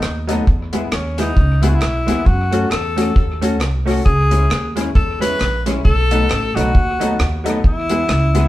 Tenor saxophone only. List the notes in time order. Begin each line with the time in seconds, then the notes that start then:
Already playing: D#4
0.93 C#4
1.19 D#4
1.62 E4
1.69 F#4
1.75 E4
2.26 F#4
2.71 A4
4.05 G#4
4.95 A4
5.21 B4
5.85 A4
6.55 F#4
7.65 E4